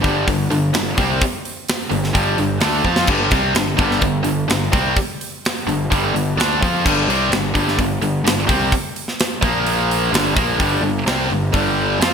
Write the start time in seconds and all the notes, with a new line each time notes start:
0.02 G1 G2 D3 G3, kick, open hi-hat
0.27 G1 G2 D3, kick, open hi-hat
0.50 G1 G2 D3, open hi-hat
0.73 G1 G2 D3, snare, open hi-hat
0.97 C2 C3 G3 C4, kick, open hi-hat
1.21 kick, open hi-hat
1.45 open hi-hat
1.69 snare, open hi-hat
1.91 G1 G2 D3, open hi-hat
2.04 snare
2.14 G1 G2 D3 G3, kick, open hi-hat
2.38 G1 G2 D3, open hi-hat
2.61 D2 D3 A3 D4, snare, open hi-hat
2.84 F2 F3 C4 F4, kick
2.96 snare
3.07 G1 G2 D3 G3, kick, crash
3.31 C2 C3 G3 C4, kick, open hi-hat
3.54 G1 G2 D3, snare, open hi-hat
3.77 G1 G2 D3 G3, kick, open hi-hat
3.91 snare
4.01 G1 G2 D3, kick, open hi-hat
4.23 G1 G2 D3, open hi-hat
4.48 G1 G2 D3, snare, open hi-hat
4.72 C2 C3 G3 C4, kick, open hi-hat
4.96 kick, open hi-hat
5.21 open hi-hat
5.45 snare, open hi-hat
5.67 G1 G2 D3, open hi-hat
5.90 G1 G2 D3 G3, kick, open hi-hat
6.14 G1 G2 D3, open hi-hat
6.37 D2 D3 A3 D4, snare, open hi-hat
6.62 F2 F3 C4 F4, kick, open hi-hat
6.84 G1 G2 D3 G3, kick, crash
7.07 C2 C3 G3 C4, open hi-hat
7.29 G1 G2 D3, snare, open hi-hat
7.54 G1 G2 D3 G3, kick, open hi-hat
7.68 snare
7.79 G1 G2 D3, kick, open hi-hat
8.00 G1 G2 D3, open hi-hat
8.24 G1 G2 D3, snare, open hi-hat
8.47 C2 C3 G3 C4, kick, open hi-hat
8.72 kick, open hi-hat
8.96 open hi-hat
9.08 snare
9.20 snare, open hi-hat
9.42 A#1 A#2 F3 A#3, kick, open hi-hat
9.66 open hi-hat
9.91 open hi-hat
10.12 G1 G2 D3 G3, snare, open hi-hat
10.35 A#1 A#2 F3 A#3, kick, open hi-hat
10.58 G1 G2 D3 G3, kick, open hi-hat
10.82 G1 G2 D3
11.06 C2 C3 G3 C4, snare, open hi-hat
11.30 G1 G2 D3
11.53 G1 G2 D3 G3, kick, open hi-hat
12.00 F2 F3 C4 F4, snare, open hi-hat